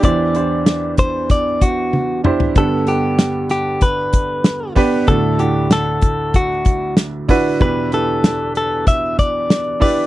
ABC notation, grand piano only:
X:1
M:4/4
L:1/16
Q:1/4=95
K:G
V:1 name="Grand piano"
[DEGc]2 [DEGc]6- [DEGc] z4 z [DEGc]2 | [B,DGA]2 [B,DGA]6- [B,DGA] z4 z [B,DGB]2 | [DEFA]2 [DEAf]6- [DEAf] z4 z [DEFB]2 | [DEGB]2 [DEGB]6- [DEGB] z4 z [DEGB]2 |]
V:2 name="Grand piano" clef=bass
[E,,E,]16 | [G,,D,]16 | [D,,A,,]16 | [E,,B,,]16 |]